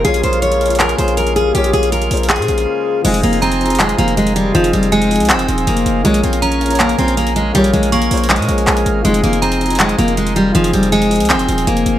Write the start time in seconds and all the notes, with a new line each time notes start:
Already playing: G#3
0.02 A#1 C#3 A#3 F4 G#4, closed hi-hat
0.07 C#5
0.14 closed hi-hat
0.23 A#1 C5, closed hi-hat
0.33 closed hi-hat
0.42 C#5, closed hi-hat
0.52 closed hi-hat
0.59 A#3 F4 G#4, closed hi-hat
0.64 A#3 C#5, closed hi-hat
0.69 F4 G#4 C#5, closed hi-hat
0.75 closed hi-hat
0.80 A#4, clap, closed hi-hat
0.89 closed hi-hat
0.96 A#1 A#3 F4 G#4 C5, closed hi-hat
1.01 C#5
1.08 closed hi-hat
1.17 A#4, closed hi-hat
1.27 closed hi-hat
1.36 G#4, closed hi-hat
1.52 A#1 A#3 F4 G4 G#4, closed hi-hat
1.57 C#5
1.64 closed hi-hat
1.73 A#1 G#4, closed hi-hat
1.83 closed hi-hat
1.92 A#4, closed hi-hat
2.02 closed hi-hat
2.08 A#1 A#3 F4 G#4, closed hi-hat, open hi-hat
2.14 C5, closed hi-hat
2.23 closed hi-hat
2.30 G#4, clap, closed hi-hat
2.36 A#2, closed hi-hat
2.42 A#3, closed hi-hat
2.48 A#1 F4 G#4 C#5, closed hi-hat
2.58 closed hi-hat
3.02 F1 F3 G#3 C4 D#4 F4 G#4 D#5, closed hi-hat, crash
3.08 G#4
3.14 closed hi-hat
3.23 F1 A#3, closed hi-hat
3.33 closed hi-hat
3.42 C4 A#5, closed hi-hat
3.52 closed hi-hat
3.58 F3 C4 D#4, closed hi-hat
3.64 G#4, closed hi-hat
3.68 F3 C4 D#4, closed hi-hat
3.73 G#4, closed hi-hat
3.80 G#3, clap, closed hi-hat
3.89 closed hi-hat
3.96 F1 F3 A#3 C4 D#4, closed hi-hat
4.01 A#4
4.08 closed hi-hat
4.17 G#3, closed hi-hat
4.27 closed hi-hat
4.36 G3, closed hi-hat
4.52 F1 F3 C4 D#4, closed hi-hat
4.57 G#4
4.64 closed hi-hat
4.73 F1 G3, closed hi-hat
4.83 closed hi-hat
4.92 G#3 G#5, closed hi-hat
5.02 closed hi-hat
5.09 F3 C4 D#4, closed hi-hat, open hi-hat
5.14 G#4, closed hi-hat
5.20 C2, closed hi-hat
5.25 closed hi-hat
5.30 C4, clap, closed hi-hat
5.34 F1
5.39 closed hi-hat
5.46 D#1 F3 C4 D#4, closed hi-hat
5.51 G#4
5.58 closed hi-hat
5.67 F1 A#3, closed hi-hat
5.77 closed hi-hat
5.86 F1, closed hi-hat
6.02 A#1 G#3 A#3 C#4 F4 G#4 A#4 F5, closed hi-hat
6.07 C#5
6.14 closed hi-hat
6.23 A#1 C4, closed hi-hat
6.33 closed hi-hat
6.42 C#4 A#5, closed hi-hat
6.52 closed hi-hat
6.59 A#3 F4 G#4, closed hi-hat
6.64 A#3 C#5, closed hi-hat
6.69 F4 G#4 C#5, closed hi-hat
6.75 closed hi-hat
6.80 A#3, clap, closed hi-hat
6.89 closed hi-hat
6.96 A#1 A#3 C4 F4 G#4, closed hi-hat
7.01 C#5
7.08 closed hi-hat
7.17 A#3, closed hi-hat
7.27 closed hi-hat
7.36 G#3, closed hi-hat
7.52 A#1 G3 A#3 F4 G#4, closed hi-hat
7.57 C#5
7.64 closed hi-hat
7.73 A#1 G#3, closed hi-hat
7.83 closed hi-hat
7.92 A#3 C#6, closed hi-hat
8.02 closed hi-hat
8.09 A#1 A#3 F4 G#4, closed hi-hat, open hi-hat
8.14 C5, closed hi-hat
8.24 closed hi-hat
8.30 G#3, clap, closed hi-hat
8.36 A#2, closed hi-hat
8.42 A#3, closed hi-hat
8.48 A#1 F4 G#4 C#5, closed hi-hat
8.58 closed hi-hat
8.67 A#1, clap, closed hi-hat
8.77 closed hi-hat
8.86 G#1, closed hi-hat
9.02 F1 F3 G#3 C4 D#4 G#4 C5, closed hi-hat
9.07 G#4
9.14 closed hi-hat
9.23 F1 A#3, closed hi-hat
9.33 closed hi-hat
9.42 C4 A#5, closed hi-hat
9.52 closed hi-hat
9.59 F3 C4 D#4, closed hi-hat
9.64 G#4, closed hi-hat
9.68 F3 C4 D#4, closed hi-hat
9.73 G#4, closed hi-hat
9.80 G#3, clap, closed hi-hat
9.89 closed hi-hat
9.96 F1 F3 A#3 C4 D#4, closed hi-hat
10.01 A#4
10.08 closed hi-hat
10.17 G#3, closed hi-hat
10.27 closed hi-hat
10.36 G3, closed hi-hat
10.52 F1 F3 C4 D#4, closed hi-hat
10.57 G#4
10.64 closed hi-hat
10.73 F1 G3, closed hi-hat
10.83 closed hi-hat
10.92 G#3 G#5, closed hi-hat
11.02 closed hi-hat
11.09 F3 C4 D#4, closed hi-hat, open hi-hat
11.14 G#4, closed hi-hat
11.20 C2, closed hi-hat
11.25 closed hi-hat
11.30 C4, clap, closed hi-hat
11.34 F1
11.39 closed hi-hat
11.46 D#1 F3 C4 D#4, closed hi-hat
11.51 G#4
11.58 closed hi-hat
11.67 F1 A#3, closed hi-hat
11.77 closed hi-hat
11.86 F1, closed hi-hat